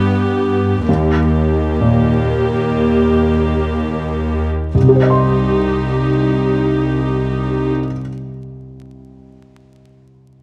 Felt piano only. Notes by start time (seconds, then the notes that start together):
Already playing: G2 D3
0.89 D#2
1.81 A#2
4.75 C2
4.82 C3
4.89 G4
4.96 C5
5.03 D#5
5.10 C6